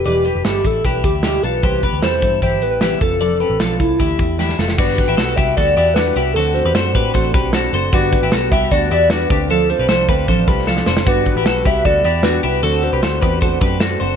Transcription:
<<
  \new Staff \with { instrumentName = "Soft synth lead" } { \time 4/4 \key e \phrygian \tempo 4 = 153 g'4 g'8 a'8 b'8 g'8 g'8 b'8~ | b'4 c''4 c''8 b'16 b'8. a'8~ | a'4. e'2 r8 | \key g \major b'4. e''8 d''8 d''8 b'4 |
a'8 c''4. r2 | b'4. e''8 d''8 d''8 b'4 | a'8 c''4. r2 | b'4. e''8 d''8 d''8 b'4 |
a'8 c''4. r2 | }
  \new Staff \with { instrumentName = "Clean electric guitar" } { \time 4/4 \key e \phrygian <b' d''>8 <g' b'>8 <e' a'>4 <e' g'>4 <e' g'>8 <f' a'>8 | <g' c''>8 <g' b'>8 <e' a'>4 <e' g'>4 <e' g'>8 <f' a'>8 | <a' d''>8 <g' b'>8 <f' a'>4 <e' g'>4 <e' g'>8 <f' a'>8 | \key g \major <d' fis'>8. <e' g'>16 <fis' a'>8 <e' g'>8 <fis' a'>8 <e' g'>8 <d' fis'>8 <e' g'>8 |
<fis' a'>8. <g' b'>16 <a' c''>8 <g' b'>8 <a' c''>8 <g' b'>8 <fis' a'>8 <a' c''>8 | <d' fis'>8. <e' g'>16 <fis' a'>8 <e' g'>8 <fis' a'>8 <e' g'>8 <d' fis'>8 <d' g'>8 | <f' a'>8. <g' b'>16 <a' c''>8 <g' b'>8 <a' c''>8 <g' b'>8 <f' a'>8 <a' c''>8 | <d' fis'>8. <e' g'>16 <fis' a'>8 <e' g'>8 <fis' a'>8 <e' g'>8 <d' fis'>8 <e' g'>8 |
<fis' a'>8. <g' b'>16 <a' c''>8 <g' b'>8 <a' c''>8 <g' b'>8 <fis' a'>8 <a' c''>8 | }
  \new Staff \with { instrumentName = "Transistor combo organ" } { \time 4/4 \key e \phrygian r1 | r1 | r1 | \key g \major <fis' g' b'>1 |
<d' fis' c''>1 | <fis' g' b'>2.~ <fis' g' b'>8 <d' f' c''>8~ | <d' f' c''>1 | <fis' g' b'>1 |
<d' fis' c''>1 | }
  \new Staff \with { instrumentName = "Steel-string acoustic guitar" } { \time 4/4 \key e \phrygian <e, b, e g d' g'>8 <e g d' g'>8 <e, b, e g d' g'>8 <e g d' g'>8 <e g d' g'>8 <e g d' g'>8 <e, b, e g d' g'>8 <e g d' g'>8 | <c e g b g'>8 <g b g'>8 <c e g b g'>8 <g b g'>8 <e g b g'>8 <g b g'>8 <c e g b g'>8 <c' d' a'>8 | <f c' d' a'>8 <c' d' a'>8 <f c' d' a'>8 <c' d' a'>8 <e a d' e'>8 <a d' e'>8 <d e a d' e'>8 <a d' e'>8 | \key g \major <g b d' fis'>8 <b d' fis'>8 <g b d' fis'>8 <b d' fis'>8 <g b d' fis'>8 <b d' fis'>8 <g b d' fis'>8 <b d' fis'>8 |
<d a c' fis'>8 <a c' fis'>8 <d a c' fis'>8 <a c' fis'>8 <d a c' fis'>8 <a c' fis'>8 <d a c' fis'>8 <a c' fis'>8 | <g b d' fis'>8 <b d' fis'>8 <g b d' fis'>8 <b d' fis'>8 <g b d' fis'>8 <b d' fis'>8 <g b d' fis'>8 <c' d' a'>8 | <d f c' d' a'>8 <c' d' a'>8 <f c' d' a'>8 <c' d' a'>8 <d f c' d' a'>8 <c' d' a'>8 <f c' d' a'>8 <c' d' a'>8 | <g b d' fis'>8 <b d' fis'>8 <g b d' fis'>8 <b d' fis'>8 <g b d' fis'>8 <d' fis'>8 <g b d' fis'>8 <b d' fis'>8 |
<d a c' fis'>8 <a c' fis'>8 <d a c' fis'>8 <a c' fis'>8 <d a c' fis'>8 <a c' fis'>8 <d a c' fis'>8 <a c' fis'>8 | }
  \new Staff \with { instrumentName = "Picked electric bass" } { \clef bass \time 4/4 \key e \phrygian e,,8. f,,16 g,,8 a,,8 b,,8 d,4 b,,8 | c,8. d,16 e,8 g,8 g,,8 a,,4 f,,8~ | f,,8. a,,16 b,,8 c,8 d,8 e,4 f,,8 | \key g \major g,,8. a,,16 b,,8 c,8 d,8 e,4 c,8 |
d,8. e,16 fis,8 a,8 a,,8 b,,4 fis,,8 | g,,8. a,,16 b,,8 c,8 d,8 e,4 d,8~ | d,8. b,,16 c,8 d,8 a,,8 c,4 f,,8 | g,,8. a,,16 b,,8 c,8 d,8 e,4 c,8 |
d,8. c,16 d,8 e,4 fis,4 fis,,8 | }
  \new DrumStaff \with { instrumentName = "Drums" } \drummode { \time 4/4 hh8 hh8 <hh sn>8 <hh bd>8 <hh bd>8 <hh bd>8 <hh sn>8 hh8 | <hh bd>8 <hh bd>8 <hh sn>8 <hh bd>8 <hh bd>8 hh8 <hh sn>8 <hh bd>8 | hh8 hh8 <hh sn>8 <hh bd>8 <hh bd>8 <hh bd>8 sn16 sn16 sn16 sn16 | <cymc bd>8 <hh bd>8 <hh sn>8 <hh bd>8 <hh bd>8 hh8 <hh sn>8 hh8 |
hh8 hh8 <hh sn>8 <hh bd>8 <hh bd>8 <hh bd>8 <hh sn>8 hh8 | <hh bd>8 <hh bd>8 <hh sn>8 <hh bd>8 <hh bd>8 hh8 <hh sn>8 <hh bd>8 | hh8 hh8 <hh sn>8 <hh bd>8 <hh bd>8 <hh bd>8 sn16 sn16 sn16 sn16 | <hh bd>8 <hh bd>8 <hh sn>8 <hh bd>8 <hh bd>8 hh8 <hh sn>8 hh8 |
hh8 hh8 <hh sn>8 <hh bd>8 <hh bd>8 <hh bd>8 <hh sn>8 hh8 | }
>>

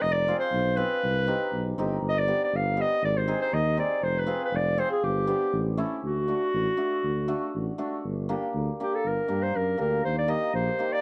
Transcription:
<<
  \new Staff \with { instrumentName = "Clarinet" } { \time 2/4 \tempo 4 = 120 ees''16 d''8 c''8. b'8~ | b'4. r8 | ees''16 d''8 d''16 f''8 ees''8 | d''16 c''8 c''16 ees''8 d''8 |
c''16 b'8 b'16 d''8 c''16 aes'16 | g'4. r8 | fis'2~ | fis'4. r8 |
r4. g'16 a'16 | bes'8. c''16 bes'8 bes'8 | c''16 d''16 ees''8 c''8. d''16 | }
  \new Staff \with { instrumentName = "Hammered dulcimer" } { \time 2/4 r8 <c' f' aes'>16 r8. <c' f' aes'>16 r16 | r8 <c' ees' g'>16 r8. <c' ees' g'>16 r16 | r8 <b d' g'>16 r8. <b d' g'>16 r16 | r8 <c' ees' aes'>16 r8. <c' ees' aes'>16 r16 |
r8 <c' f' aes'>16 r8. <c' f' aes'>16 r16 | r8 <b d' g'>16 r8. <a cis' e'>16 r16 | r8 <a d' fis'>16 r8. <a d' fis'>16 r16 | r8 <a d' fis'>16 r8. <a d' fis'>16 r16 |
r8 <bes d' g'>16 r8. <bes d' g'>16 r16 | r8 <bes d' g'>16 r8. <bes d' g'>16 r16 | r8 <bes ees' g'>16 r8. <bes ees' g'>16 r16 | }
  \new Staff \with { instrumentName = "Tuba" } { \clef bass \time 2/4 f,,4 b,,4 | c,4 b,,8 g,,8 | g,,4 g,,4 | aes,,4 ees,4 |
f,,4 f,,4 | g,,4 a,,4 | d,4 a,,8 r8 | d,4 a,,8 r8 |
g,,4 d,8 r8 | g,,8 g,8 fis,8 d,8 | ees,4 bes,,8 r8 | }
>>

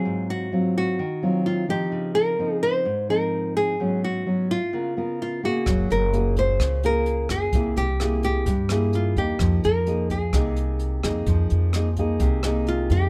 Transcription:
<<
  \new Staff \with { instrumentName = "Nylon-string guitar" } { \time 4/4 \key f \minor \tempo 4 = 128 aes'8 ges'4 ges'4. f'8 g'8~ | g'8 bes'4 c''4 bes'4 aes'8~ | aes'8 ges'4 f'4. f'8 ges'8~ | ges'8 bes'4 c''4 bes'4 aes'8~ |
aes'8 g'4 g'4. f'8 g'8~ | g'8 bes'4 aes'2~ aes'8~ | aes'2. f'8 g'8 | }
  \new Staff \with { instrumentName = "Nylon-string guitar" } { \time 4/4 \key f \minor << { <ges c' f'>4 <ges c' f'>4 r8 <ges c' f'>4 <f c' ees'>8~ | <f c' ees'>4 <f c' ees'>4 r8 <f c' ees'>4. | <ges ces' des'>4 <ges ces' des'>8 r8 <b f' bes'>8 <b f' bes'>4 <bes aes'>8~ | <bes aes'>4 <bes f' aes'>4. <bes f' aes'>4. |
<bes e' aes'>8 r8 <bes e' aes'>4 r8 <bes e' aes'>4 <bes ees'>8~ | <bes ees'>4 <bes ees' aes'>8 r8 <bes ees' aes'>4. <bes ees' aes'>8~ | <bes ees' aes'>4 <bes ees' aes'>8 <bes ees' aes'>4 <bes ees' aes'>4. | } \\ { aes,2 ees2 | des2 aes,2 | aes,2 des2 | ges2 des2 |
c2 g,2 | f2 c2 | f2 c2 | } >> }
  \new Staff \with { instrumentName = "Upright bass" } { \clef bass \time 4/4 \key f \minor r1 | r1 | r1 | ges,,8 ges,,4. des,4. ges,,8 |
c,8 c,4. g,4. e,8 | f,8 f,4. c,4. f,8 | f,8 f,4. c,4. f,8 | }
  \new DrumStaff \with { instrumentName = "Drums" } \drummode { \time 4/4 r4 r4 r4 r4 | r4 r4 r4 r4 | r4 r4 r4 r4 | <hh bd ss>8 hh8 hh8 <hh bd>8 <hh bd ss>8 hh8 hh8 <hh bd ss>8 |
<hh bd>8 hh8 <hh ss>8 <hh bd>8 <hh bd>8 <hh ss>8 hh8 <hh bd>8 | <hh bd ss>8 hh8 hh8 <hh bd>8 <hh bd ss>8 hh8 hh8 <hh bd ss>8 | <hh bd>8 hh8 <hh ss>8 <hh bd>8 <hh bd>8 <hh ss>8 hh8 <hh bd>8 | }
>>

